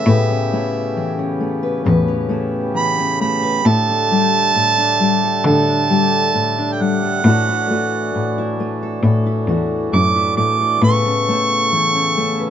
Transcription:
0.00 3.62 C#3 medium
0.00 0.11 A3 medium
0.00 3.63 B3 medium
0.00 0.52 E4 medium
0.00 1.37 E5 medium
0.06 0.49 A2 loud
0.06 1.84 A2 medium
0.06 7.21 G4 medium
0.06 1.62 B4 medium
0.30 1.18 C#4 medium
0.53 1.40 A3 medium
0.53 2.29 E4 medium
0.97 2.73 E3 medium
1.19 2.07 C#4 medium
1.40 2.29 A3 medium
1.63 1.84 B4 medium
1.85 3.62 E2 loud
1.85 3.64 A2 medium
1.85 3.41 B4 medium
2.08 2.97 C#4 medium
2.29 3.21 A3 medium
2.29 3.65 E4 medium
2.74 3.60 E3 medium
2.74 3.18 B5 loud
2.98 3.60 C#4 medium
3.21 4.11 A3 medium
3.21 3.68 B5 loud
3.42 3.60 B4 medium
3.64 4.55 A2 medium
3.64 4.08 A2 medium
3.64 7.20 D3 medium
3.64 7.21 A3 medium
3.64 5.23 A4 medium
3.64 5.46 A5 loud
3.89 4.78 D4 medium
4.11 4.99 G3 medium
4.11 5.90 G4 medium
4.55 5.46 A2 medium
4.78 5.67 D4 medium
5.00 5.89 G3 medium
5.24 5.47 A4 medium
5.45 6.34 A2 medium
5.45 7.20 D3 loud
5.45 7.02 A4 medium
5.45 6.74 A5 loud
5.68 6.57 D4 medium
5.90 6.79 G3 medium
5.90 7.20 G4 medium
6.34 7.24 A2 medium
6.58 7.20 D4 medium
6.72 6.84 G5 medium
6.80 7.25 G3 medium
6.80 8.60 F#5 medium
7.03 7.27 A4 medium
7.24 7.67 A2 loud
7.24 8.14 A2 medium
7.24 10.80 E3 medium
7.24 7.70 A3 medium
7.24 10.79 D4 medium
7.24 7.48 E4 medium
7.24 10.80 F#4 medium
7.24 7.70 F#4 medium
7.24 8.82 A4 medium
7.49 8.38 E4 medium
7.70 8.59 A3 medium
7.70 9.48 F#4 medium
8.15 9.03 A2 medium
8.38 9.26 E4 medium
8.60 9.48 A3 medium
8.83 9.04 A4 medium
9.03 9.46 A2 medium
9.03 9.92 A2 medium
9.03 10.60 A4 medium
9.26 10.15 E4 medium
9.47 9.89 E2 medium
9.47 10.37 A3 medium
9.47 10.78 F#4 medium
9.92 10.34 F#2 medium
9.92 10.81 A2 medium
9.92 10.35 D6 loud
10.16 11.05 E4 medium
10.37 10.79 A2 medium
10.37 10.85 A3 medium
10.37 10.79 D6 medium
10.61 10.81 A4 medium
10.81 12.50 A2 medium
10.81 11.25 A2 medium
10.81 12.50 C#3 medium
10.81 12.50 B3 medium
10.81 12.50 A4 medium
10.81 12.39 B4 medium
10.81 12.50 C#6 loud
11.06 11.95 C#4 medium
11.29 12.17 A3 medium
11.29 12.50 E4 medium
11.72 12.50 E3 medium
11.95 12.50 C#4 medium
12.17 12.50 A3 medium
12.39 12.50 B4 medium

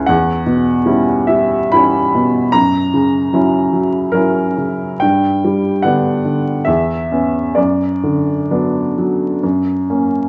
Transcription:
0.00 0.11 C#2 medium
0.00 0.10 C#4 soft
0.00 0.11 E4 soft
0.06 2.50 E2 medium
0.06 1.28 F#5 medium
0.46 1.11 B2 soft
0.86 1.25 G3 soft
0.86 1.25 C#4 soft
0.86 1.25 E4 soft
1.27 1.72 G3 soft
1.27 1.72 E5 medium
1.72 2.10 G3 soft
1.72 2.11 C#4 soft
1.72 2.11 E4 soft
1.72 2.53 B5 medium
2.15 2.54 B2 soft
2.52 4.99 F#2 medium
2.52 4.13 A#5 medium
2.94 3.57 C#3 soft
3.33 3.69 F#3 soft
3.33 3.69 C#4 soft
3.33 3.69 E4 soft
3.73 4.12 F#3 soft
4.12 4.54 F#3 soft
4.12 4.54 C#4 soft
4.12 4.54 E4 soft
4.12 5.02 A#4 medium
4.58 5.02 C#3 soft
5.00 6.63 G2 soft
5.00 5.82 G5 medium
5.44 6.09 G3 soft
5.82 6.21 D3 soft
5.82 6.21 B3 soft
5.82 6.22 D4 soft
5.82 6.67 F#5 medium
6.25 6.68 D3 soft
6.65 7.54 E2 soft
6.65 7.55 E5 medium
7.12 7.53 B3 soft
7.12 7.53 C#4 soft
7.55 9.39 F#2 soft
7.55 9.42 D5 medium
8.04 8.79 D3 soft
8.51 8.94 F#3 soft
8.51 8.94 B3 soft
8.51 8.94 D4 soft
8.98 9.44 F#3 soft
9.43 10.29 F#2 soft
9.90 10.29 A#3 soft
9.90 10.29 C#4 soft

